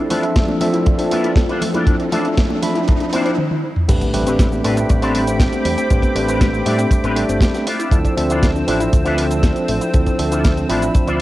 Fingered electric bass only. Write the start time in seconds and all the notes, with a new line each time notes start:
3.89 A1
4.14 A1
4.64 A2
4.90 A1
5.65 E2
5.91 A1
6.15 A1
6.66 A2
7.04 A1
7.29 G1
7.91 D2
8.17 D2
8.67 A1
8.93 D2
9.68 A1
9.94 D2
10.19 D2
10.69 A1
11.07 D2